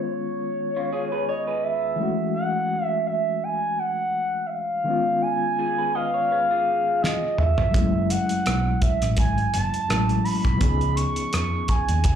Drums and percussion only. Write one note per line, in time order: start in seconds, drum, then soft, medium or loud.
7.04 snare soft
7.38 mid tom medium
7.58 floor tom medium
7.74 kick loud
7.74 closed hi-hat medium
8.10 closed hi-hat medium
8.29 closed hi-hat soft
8.46 cross-stick medium
8.46 closed hi-hat medium
8.82 kick medium
8.82 closed hi-hat medium
9.02 cross-stick soft
9.02 closed hi-hat medium
9.17 kick medium
9.17 closed hi-hat medium
9.38 closed hi-hat soft
9.54 closed hi-hat medium
9.74 closed hi-hat soft
9.90 cross-stick medium
9.90 closed hi-hat medium
10.09 closed hi-hat soft
10.25 open hi-hat soft
10.45 kick medium
10.45 closed hi-hat soft
10.61 kick loud
10.61 closed hi-hat medium
10.81 closed hi-hat soft
10.97 closed hi-hat medium
11.16 closed hi-hat soft
11.33 cross-stick medium
11.33 closed hi-hat medium
11.68 kick medium
11.68 closed hi-hat medium
11.89 closed hi-hat medium
12.04 kick medium
12.04 closed hi-hat medium